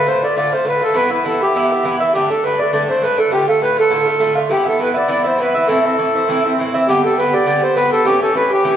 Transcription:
0.07 bouzouki A2 D3 A3 F4, accordion C5
0.23 bouzouki D3 A3 F4, accordion D5
0.36 bouzouki A2 D3 A3 F4, accordion D5
0.52 bouzouki D3 A3 F4, accordion C5
0.65 bouzouki A2 D3 A3 F4, accordion B4
0.81 bouzouki D3 A3 F4, accordion A4
0.94 bouzouki G2 E3 B3 E4, accordion B4
1.10 bouzouki E3 B3 E4, accordion B4
1.24 bouzouki G2 E3 B3 E4, accordion A4
1.41 bouzouki E3 B3 E4, accordion G4
1.55 bouzouki G2 E3 B3 E4
1.71 bouzouki E3 B3 E4
1.83 bouzouki G2 E3 B3 E4
2.00 bouzouki E3 B3 E4
2.13 bouzouki G2 D3 A3 D4, accordion G4
2.30 bouzouki D3 A3 D4, accordion A4
2.43 bouzouki G2 D3 A3 D4, accordion B4
2.59 bouzouki D3 A3 D4, accordion D5
2.72 bouzouki G2 D3 A3 D4, accordion D5
2.89 bouzouki D3 A3 D4, accordion C5
3.02 bouzouki G2 D3 A3 D4, accordion B4
3.17 bouzouki D3 A3 D4, accordion A4
3.31 bouzouki A2 D3 A3 F4, accordion G4
3.48 bouzouki D3 A3 F4, accordion A4
3.61 bouzouki A2 D3 A3 F4, accordion B4
3.77 bouzouki D3 A3 F4, accordion A4
3.90 bouzouki A2 D3 A3 F4
4.06 bouzouki D3 A3 F4
4.19 bouzouki A2 D3 A3 F4
4.35 bouzouki D3 A3 F4
4.49 bouzouki G2 E3 B3 E4, accordion G4
4.65 bouzouki E3 B3 E4, accordion A4
4.79 bouzouki G2 E3 B3 E4, accordion B4
4.94 bouzouki E3 B3 E4, accordion D5
5.08 bouzouki G2 E3 B3 E4
5.12 accordion D5
5.23 bouzouki E3 B3 E4, accordion C5 D5
5.38 bouzouki G2 E3 B3 E4, accordion B4
5.54 bouzouki E3 B3 E4
5.68 bouzouki A2 E3 C4 E4, accordion A4
5.86 bouzouki E3 C4 E4
5.98 bouzouki A2 E3 C4 E4
6.15 bouzouki E3 C4 E4
6.28 bouzouki A2 E3 C4 E4
6.45 bouzouki E3 C4 E4
6.58 bouzouki A2 E3 C4 E4
6.74 bouzouki E3 C4 E4
6.88 bouzouki G2 D3 B3 G4, accordion G4
7.04 bouzouki D3 B3 G4, accordion A4
7.18 bouzouki G2 D3 B3 G4, accordion B4
7.33 bouzouki D3 B3 G4, accordion D5
7.46 bouzouki G2 D3 B3 G4, accordion D5
7.62 bouzouki D3 B3 G4, accordion C5
7.76 bouzouki G2 D3 B3 G4, accordion B4
7.92 bouzouki D3 B3 G4, accordion A4
8.05 bouzouki A2 E3 C#4 G4, accordion G4
8.20 bouzouki E3 C#4 G4, accordion A4
8.34 bouzouki A2 E3 C#4 G4, accordion B4
8.50 bouzouki E3 C#4 G4, accordion G4
8.63 bouzouki A2 E3 C#4 G4

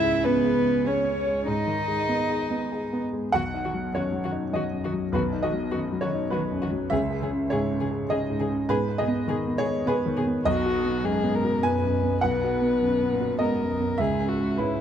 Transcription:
Already playing: grand piano C#2 G#2, cello E4, violin E5
0.04 grand piano G#3
0.24 cello B3, grand piano C#4, violin B4
0.44 grand piano G#4
0.64 grand piano C#4
0.85 cello C#4, grand piano G#4, violin C#5
1.05 grand piano C#4
1.26 grand piano G#3
1.47 grand piano G#2, cello D#4, violin D#5
1.67 grand piano D#3
1.88 grand piano G#3
2.08 grand piano B3
2.29 grand piano G#4
2.50 grand piano B3
2.72 grand piano G#4
2.93 grand piano B3
3.13 grand piano G#3
3.32 grand piano B1 F#5, cello D#3, violin F#4
3.54 grand piano D#4
3.64 cello D#3, violin F#4
3.74 grand piano F#3
3.92 grand piano F#2 C#5, cello D#3, violin F#4
4.12 grand piano F#3
4.23 cello D#3, violin F#4
4.32 grand piano D#4
4.52 cello D#3, grand piano F#3 D#5, violin F#4
4.72 grand piano F#2
4.85 cello D#3, violin F#4
4.93 grand piano F#3
5.12 grand piano B1 B4, cello D#3, violin F#4
5.33 grand piano D#4
5.43 cello D#3, violin F#4, grand piano D#5
5.52 grand piano F#3
5.72 grand piano F#2, cello D#3, violin F#4
5.92 grand piano F#3
6.01 cello D#3, violin F#4, grand piano C#5
6.12 grand piano D#4
6.30 grand piano F#3 B4, violin F#4
6.35 cello D#3
6.51 grand piano F#2
6.62 cello D#3, violin F#4
6.71 grand piano F#3
6.90 grand piano C#2 E5, cello C#3, violin G#4
7.10 grand piano G#4
7.21 cello C#3, violin G#4
7.31 grand piano C#4
7.50 grand piano G#2 C#5, cello C#3, violin G#4
7.71 grand piano C#4
7.80 cello C#3, violin G#4
7.91 grand piano G#4
8.09 cello C#3, grand piano C#4 D#5, violin G#4
8.30 grand piano G#2
8.39 cello C#3, violin G#4
8.50 grand piano C#4
8.69 grand piano G#2 B4, cello B2, violin G#4
8.89 grand piano G#4
8.98 cello B2, violin G#4, grand piano D#5
9.08 grand piano B3
9.27 cello B2, grand piano D#3, violin G#4
9.47 grand piano B3
9.58 cello B2, violin G#4, grand piano C#5
9.66 grand piano G#4
9.86 cello B2, grand piano B3 B4, violin G#4
10.06 grand piano D#3
10.17 cello B2, violin G#4
10.27 grand piano B3
10.45 grand piano B1 D#5, cello B2, violin F#4
10.66 grand piano F#4
10.85 grand piano B3
11.04 grand piano F#2, cello G#2, violin G#4
11.23 grand piano B3
11.35 violin A#4
11.44 grand piano F#4
11.63 cello F#2, grand piano B3 G#5, violin B4
11.83 grand piano F#2
12.04 grand piano B3
12.21 grand piano B1 F#5, cello B2, violin B4
12.44 grand piano F#4
12.61 grand piano B3
12.80 grand piano F#2, cello B2
13.00 grand piano B3
13.12 cello A#2
13.21 grand piano F#4
13.39 cello G#2, grand piano B3 D#5, violin A#4
13.60 grand piano F#2
13.70 cello F#2
13.80 grand piano B3
13.98 grand piano C#2 E5, cello G#2, violin G#4
14.20 grand piano C#4
14.29 violin F#4
14.40 grand piano G#3
14.58 grand piano G#2 B4, cello C#3, violin E4

